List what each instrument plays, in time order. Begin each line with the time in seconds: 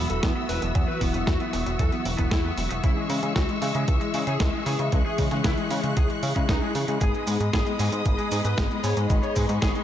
Already playing: analog polysynth E3 F#3 B3 E4, string section F#4 E5 B5 E6
0.10 analog synth bass E1, lead electric guitar A4, closed hi-hat
0.23 analog synth bass E2, lead electric guitar B3, kick, snare, closed hi-hat
0.36 lead electric guitar B3
0.49 analog synth bass E1, analog polysynth E3 F#3 B3 E4, lead electric guitar B4, open hi-hat
0.62 analog synth bass E1, lead electric guitar B3, closed hi-hat
0.75 analog synth bass E2, analog polysynth E3 F#3 B3 E4, lead electric guitar B3, string section C#6, kick, closed hi-hat
0.88 lead electric guitar B4
1.01 analog synth bass E1, lead electric guitar B3, kick, open hi-hat
1.14 analog synth bass E1, lead electric guitar B3, closed hi-hat
1.27 analog synth bass E2, lead electric guitar F#4, kick, snare, closed hi-hat
1.40 lead electric guitar B3, closed hi-hat
1.53 analog synth bass E1, lead electric guitar B3, open hi-hat
1.66 analog synth bass E1, lead electric guitar B3, closed hi-hat
1.79 analog synth bass E2, lead electric guitar A4, kick, closed hi-hat
1.92 lead electric guitar B3, closed hi-hat
2.05 analog synth bass E1, open hi-hat
2.18 analog synth bass E1, lead electric guitar B3, kick, closed hi-hat
2.31 analog synth bass E2, lead electric guitar E4, kick, snare, closed hi-hat
2.45 lead electric guitar B3
2.57 analog synth bass E1, analog polysynth E3 F#3 B3 E4, open hi-hat
2.71 analog synth bass E1, lead electric guitar B3, closed hi-hat
2.84 analog synth bass C#2, analog polysynth E3 G#3 C#4 E4, lead electric guitar E4, string section G#4 E5 E6, kick, closed hi-hat
2.97 lead electric guitar G#3
3.10 analog synth bass C#3, lead electric guitar G#3, open hi-hat
3.23 analog synth bass C#3, lead electric guitar G#3, closed hi-hat
3.36 analog synth bass C#2, lead electric guitar F#4, kick, snare, closed hi-hat
3.49 lead electric guitar G#3, closed hi-hat
3.62 analog synth bass C#3, lead electric guitar G#3, open hi-hat
3.75 analog synth bass C#3, lead electric guitar G#3, closed hi-hat
3.88 analog synth bass C#2, kick, closed hi-hat
4.01 lead electric guitar G#3, closed hi-hat
4.14 analog synth bass C#3, lead electric guitar G#3, open hi-hat
4.27 analog synth bass C#3, lead electric guitar G#4, closed hi-hat
4.40 analog synth bass C#2, lead electric guitar G#3, kick, snare, closed hi-hat
4.54 lead electric guitar G#3
4.66 analog synth bass C#3, analog polysynth E3 G#3 C#4 E4, lead electric guitar G#4, open hi-hat
4.79 analog synth bass C#3, lead electric guitar G#3, closed hi-hat
4.92 analog synth bass C#2, analog polysynth E3 G#3 C#4 E4, lead electric guitar G#3, string section F#6, kick, closed hi-hat
5.06 lead electric guitar G#4
5.18 analog synth bass C#3, lead electric guitar G#3, kick, open hi-hat
5.31 analog synth bass C#3, lead electric guitar G#3, snare, closed hi-hat
5.44 analog synth bass C#2, lead electric guitar E4, kick, snare, closed hi-hat
5.57 lead electric guitar G#3, closed hi-hat
5.71 analog synth bass C#3, lead electric guitar G#3, open hi-hat
5.84 analog synth bass C#3, lead electric guitar G#3, closed hi-hat
5.97 analog synth bass C#2, lead electric guitar G#4, kick, closed hi-hat
6.10 lead electric guitar G#3, closed hi-hat
6.23 analog synth bass C#3, open hi-hat
6.36 analog synth bass C#3, lead electric guitar G#3, kick, closed hi-hat
6.49 analog synth bass C#2, lead electric guitar D#4, kick, snare, closed hi-hat
6.62 lead electric guitar G#3
6.75 analog synth bass C#3, analog polysynth E3 G#3 C#4 E4, open hi-hat
6.88 analog synth bass C#3, lead electric guitar G#3, closed hi-hat
7.01 analog synth bass G#1, analog polysynth G#3 B3 D#4 G#4, lead electric guitar G#4, string section D#5 B5 D#6, kick, closed hi-hat, cabasa
7.14 lead electric guitar G#3, cabasa
7.27 analog synth bass G#2, lead electric guitar G#3, open hi-hat, cabasa
7.40 analog synth bass G#2, lead electric guitar G#3, closed hi-hat, cabasa
7.53 analog synth bass G#1, lead electric guitar G#4, kick, snare, closed hi-hat, cabasa
7.66 lead electric guitar G#3, closed hi-hat, cabasa
7.79 analog synth bass G#2, lead electric guitar G#3, open hi-hat, cabasa
7.92 analog synth bass G#2, lead electric guitar G#3, closed hi-hat, cabasa
8.06 analog synth bass G#1, kick, closed hi-hat, cabasa
8.19 lead electric guitar G#3, closed hi-hat, cabasa
8.32 analog synth bass G#2, lead electric guitar G#3, open hi-hat, cabasa
8.45 analog synth bass G#2, lead electric guitar B4, closed hi-hat, cabasa
8.58 analog synth bass G#1, lead electric guitar G#3, kick, snare, closed hi-hat, cabasa
8.71 lead electric guitar G#3, cabasa
8.84 analog synth bass G#2, analog polysynth G#3 B3 D#4 G#4, lead electric guitar C#5, open hi-hat, cabasa
8.97 analog synth bass G#2, lead electric guitar G#3, closed hi-hat, cabasa
9.10 analog synth bass G#1, lead electric guitar G#3, analog polysynth G#3 B3 D#4 G#4, string section C#6, kick, closed hi-hat, cabasa
9.23 lead electric guitar C#5, cabasa
9.36 analog synth bass G#2, lead electric guitar G#3, kick, open hi-hat, cabasa
9.49 analog synth bass G#2, lead electric guitar G#3, closed hi-hat, cabasa
9.62 analog synth bass G#1, lead electric guitar G#4, kick, snare, closed hi-hat, cabasa
9.75 lead electric guitar G#3, closed hi-hat, cabasa